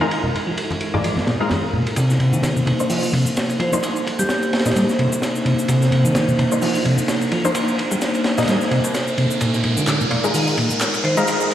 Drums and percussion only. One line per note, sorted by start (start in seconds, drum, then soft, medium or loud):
0.11 ride medium
0.24 low conga medium
0.35 ride medium
0.35 muted conga soft
0.47 shaker medium
0.57 ride medium
0.71 ride soft
0.71 muted conga medium
0.81 ride medium
0.94 high conga medium
0.94 shaker medium
1.04 ride medium
1.17 snare soft
1.17 muted conga medium
1.17 high conga medium
1.27 snare loud
1.27 ride medium
1.40 shaker medium
1.50 snare medium
1.50 ride medium
1.50 muted conga medium
1.50 high conga medium
1.73 low conga medium
1.87 ride medium
1.96 kick loud
1.96 ride medium
1.96 shaker soft
2.10 snare soft
2.10 shaker soft
2.20 ride medium
2.33 shaker medium
2.43 snare loud
2.43 ride medium
2.43 shaker medium
2.57 shaker soft
2.67 ride medium
2.80 shaker medium
2.90 open hi-hat medium
2.90 shaker medium
3.03 ride soft
3.03 shaker soft
3.13 kick medium
3.13 ride medium
3.26 shaker medium
3.37 snare loud
3.37 ride medium
3.37 shaker medium
3.49 ride soft
3.49 shaker soft
3.60 kick medium
3.60 ride medium
3.73 kick loud
3.73 shaker medium
3.83 kick loud
3.83 ride medium
3.83 shaker soft
3.96 shaker soft
4.07 kick medium
4.07 ride medium
4.19 kick medium
4.19 shaker medium
4.29 snare loud
4.29 ride medium
4.29 shaker medium
4.43 ride soft
4.43 shaker soft
4.53 snare medium
4.53 ride medium
4.59 snare medium
4.59 ride medium
4.66 snare medium
4.66 ride medium
4.66 shaker medium
4.71 snare medium
4.71 ride medium
4.76 ride medium
4.76 shaker medium
4.89 snare soft
4.89 shaker soft
4.99 ride medium
5.12 kick loud
5.12 shaker medium
5.22 snare loud
5.22 ride medium
5.22 shaker medium
5.36 shaker soft
5.46 ride medium
5.59 shaker medium
5.68 kick loud
5.68 ride medium
5.68 shaker medium
5.82 snare soft
5.82 shaker soft
5.92 ride medium
6.05 shaker medium
6.15 snare loud
6.15 ride medium
6.15 shaker medium
6.28 shaker soft
6.39 ride medium
6.52 shaker medium
6.62 open hi-hat medium
6.62 shaker medium
6.74 ride soft
6.74 shaker soft
6.85 kick medium
6.85 ride medium
6.98 shaker medium
7.08 snare loud
7.08 ride medium
7.08 shaker medium
7.21 ride soft
7.21 shaker soft
7.32 kick medium
7.32 ride medium
7.45 kick medium
7.45 shaker medium
7.54 kick loud
7.54 ride medium
7.54 shaker soft
7.68 shaker soft
7.79 kick medium
7.79 ride medium
7.91 kick medium
7.91 shaker medium
8.01 snare loud
8.01 ride medium
8.01 shaker soft
8.15 ride soft
8.15 shaker soft
8.24 snare loud
8.24 ride medium
8.38 snare medium
8.38 ride medium
8.38 shaker medium
8.43 snare medium
8.43 ride medium
8.48 snare medium
8.48 ride medium
8.48 shaker medium
8.61 snare soft
8.61 shaker soft
8.71 ride medium
8.84 kick medium
8.84 shaker medium
8.94 snare loud
8.94 ride medium
8.94 shaker soft
9.07 shaker soft
9.18 ride medium
9.31 shaker medium
9.41 kick loud
9.41 ride medium
9.41 shaker soft
9.53 snare soft
9.53 shaker soft
9.64 ride medium
9.77 shaker medium
9.87 snare loud
9.87 clap loud
9.87 ride medium
9.87 shaker soft
10.01 shaker soft
10.11 ride medium
10.24 shaker medium
10.34 open hi-hat medium
10.34 shaker medium
10.47 ride soft
10.47 shaker soft
10.58 kick medium
10.58 ride medium
10.70 shaker medium
10.81 snare loud
10.81 clap loud
10.81 ride medium
10.81 shaker soft
10.94 ride soft
10.94 shaker soft
11.04 kick loud
11.04 ride medium
11.17 kick loud
11.17 shaker medium
11.27 kick loud
11.27 ride medium
11.27 shaker soft
11.40 shaker soft
11.51 kick medium